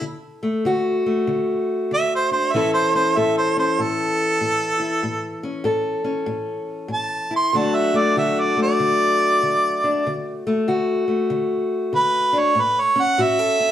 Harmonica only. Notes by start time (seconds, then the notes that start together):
1.94 E5
2.15 C5
2.32 C5
2.52 E5
2.74 C5
2.95 C5
3.18 E5
3.38 C5
3.59 C5
3.81 A4
6.93 A5
7.36 C6
7.57 A5
7.75 E5
7.97 D5
8.18 E5
8.41 D5
8.63 D5
11.96 B4
12.39 C#5
12.60 B4
12.81 C#5
13.01 F#5
13.22 E5